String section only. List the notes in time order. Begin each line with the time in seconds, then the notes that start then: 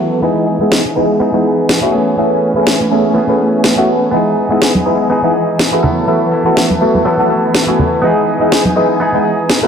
Already playing: E3 A4 B4
0.23 D#5 G#5
1.94 A3 C#4 B4
4.13 E3 D#5 G#5
5.84 A4 B4
8.03 D#5 G#5